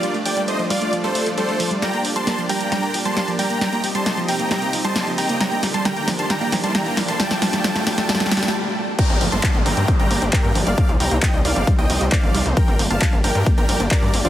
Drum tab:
CC |--------------------------------|--------------------------------|--------------------------------|--------------------------------|
HH |x-x-o-x-x-x-o-x-x-x-o-x-x-x-o-x-|x-x-o-x-x-x-o-x-x-x-o-x-x-x-o-x-|x-x-o-x-x-x-o-x-x-x-o-x-x-x-o-x-|x-x-o-x-x-x-o-x-x-x-o-x-x-x-o-x-|
CP |--------------------------------|--------------------------------|--------------------------------|--------------------------------|
SD |--------------------------------|o-------o-------o-------o-------|o-------o-------o-------o-------|o---o---o---o---o---o---o---o---|
BD |--------------------------------|--------------------------------|--------------------------------|--------------------------------|

CC |--------------------------------|x-------------------------------|--------------------------------|--------------------------------|
HH |x-x-o-x-x-x-o-x-x-x-o-x---------|x-x-o-x-x-x-o-x-x-x-o-x-x-x-o-x-|x-x-o-x-x-x-o-x-x-x-o-x-x-x-o-x-|x-x-o-x-x-x-o-x-x-x-o-x-x-x-o-x-|
CP |--------------------------------|--------x---------------x-------|--------x---------------x-------|--------x---------------x-------|
SD |o-o-o-o-o-o-o-o-oooooooo--------|--------------------------------|--------------------------------|--------------------------------|
BD |--------------------------------|o-------o-------o-------o-------|o-------o-------o-------o-------|o-------o-------o-------o-------|